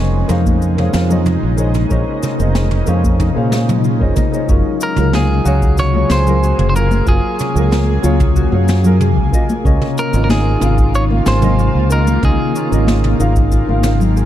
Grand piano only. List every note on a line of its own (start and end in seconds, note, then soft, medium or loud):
0.00 0.25 A#3 medium
0.00 0.25 G#4 medium
0.00 0.26 C5 medium
0.00 0.26 D#5 medium
0.27 0.73 A#3 medium
0.27 0.74 G#4 medium
0.27 0.74 C5 medium
0.27 0.75 F5 medium
0.77 1.06 A#3 medium
0.77 1.06 G#4 medium
0.77 1.06 C5 medium
0.77 1.07 C#5 medium
0.77 1.07 F5 medium
1.09 1.18 A#3 medium
1.09 1.18 G#4 medium
1.09 1.19 C5 medium
1.09 1.19 C#5 medium
1.09 1.19 D#5 medium
1.57 1.67 A#3 medium
1.57 1.67 G#4 medium
1.57 1.67 C5 medium
1.57 1.68 C#5 medium
1.57 1.68 D#5 medium
1.89 2.35 A#3 medium
1.89 2.35 G#4 medium
1.89 2.36 C5 medium
1.89 2.36 C#5 medium
1.89 2.36 D#5 medium
2.38 2.83 A#3 medium
2.38 2.83 G#4 medium
2.38 2.84 C5 medium
2.38 2.85 D#5 medium
2.86 3.32 A#3 medium
2.86 3.32 G#4 medium
2.86 3.32 C5 medium
2.86 3.33 F5 medium
3.35 3.48 A#3 medium
3.35 3.48 G#4 medium
3.35 3.49 C5 medium
3.35 3.49 C#5 medium
3.35 3.49 F5 medium
3.50 3.65 A#3 medium
3.50 3.66 G#4 medium
3.50 3.66 C5 medium
3.50 3.66 C#5 medium
3.50 3.67 F5 medium
3.99 4.13 A#3 medium
3.99 4.14 G#4 medium
3.99 4.14 C5 medium
3.99 4.14 C#5 medium
3.99 4.15 D#5 medium
4.15 4.28 A#3 medium
4.15 4.29 G#4 medium
4.15 4.29 C5 medium
4.15 4.29 C#5 medium
4.15 4.30 D#5 medium
4.32 4.46 A#3 medium
4.32 4.46 G#4 medium
4.32 4.46 C5 medium
4.32 4.47 C#5 medium
4.32 4.47 D#5 medium
4.47 4.93 F#3 medium
4.47 4.94 F4 medium
4.47 4.94 G#4 medium
4.47 4.95 A#4 medium
4.97 5.41 F#3 medium
4.97 5.42 F4 medium
4.97 5.42 G#4 medium
4.97 5.43 A#4 medium
5.44 5.90 F#3 medium
5.44 5.91 G#4 medium
5.44 5.92 C#5 loud
5.44 5.90 F5 medium
5.93 6.22 F#3 medium
5.93 6.23 F4 medium
5.93 6.23 G#4 medium
5.93 6.24 C#5 medium
6.26 6.34 F#3 medium
6.26 6.35 F4 medium
6.26 6.35 G#4 medium
6.26 6.36 A#4 medium
6.73 6.83 F#3 medium
6.73 6.83 F4 medium
6.73 6.84 G#4 medium
6.73 6.84 A#4 medium
7.06 7.51 F#3 medium
7.06 7.52 G#4 medium
7.06 7.53 A#4 medium
7.06 7.52 F5 medium
7.55 7.99 F#3 medium
7.55 8.00 F4 medium
7.55 8.00 G#4 medium
7.55 8.01 A#4 medium
8.02 8.48 F#3 medium
8.02 8.48 F4 medium
8.02 8.49 G#4 medium
8.02 8.49 C#5 loud
8.51 8.80 F#3 medium
8.51 8.81 F4 medium
8.51 8.81 G#4 medium
8.51 8.82 C#5 medium
8.83 8.92 F#3 medium
8.83 8.93 F4 medium
8.83 8.93 G#4 medium
8.83 8.94 A#4 loud
9.31 9.41 C#3 medium
9.31 9.41 A#3 medium
9.31 9.42 F4 medium
9.31 9.42 D#5 loud
9.64 10.09 C#3 medium
9.64 10.10 A#3 medium
9.64 10.10 F4 medium
9.64 10.11 D#5 medium
10.13 10.57 C#3 medium
10.13 10.58 A#3 medium
10.13 10.58 F4 medium
10.13 10.59 D#5 medium
10.60 11.06 C#3 medium
10.60 11.06 A#3 medium
10.60 11.07 F4 medium
10.60 11.07 F5 loud
11.09 11.38 C#3 medium
11.09 11.39 A#3 medium
11.09 11.39 F4 medium
11.09 11.40 F5 medium
11.41 11.50 C#3 medium
11.41 11.51 A#3 medium
11.41 11.51 F4 medium
11.41 11.52 D#5 medium
11.89 11.99 C#3 medium
11.89 11.99 A#3 medium
11.89 12.00 F4 medium
11.89 12.00 D#5 medium
12.21 12.67 C#3 medium
12.21 12.68 A#3 medium
12.21 12.68 F4 medium
12.21 12.69 D#5 medium
12.70 13.15 C#3 medium
12.70 13.16 A#3 medium
12.70 13.16 F4 medium
12.70 13.17 D#5 medium
13.18 13.64 C#3 medium
13.18 13.64 A#3 medium
13.18 13.65 F4 medium
13.18 13.66 F5 loud
13.67 13.80 C#3 medium
13.67 13.81 A#3 medium
13.67 13.81 F4 medium
13.67 13.82 F5 medium
13.83 13.98 C#3 medium
13.83 13.98 A#3 medium
13.83 13.99 F4 medium
13.83 13.99 F5 medium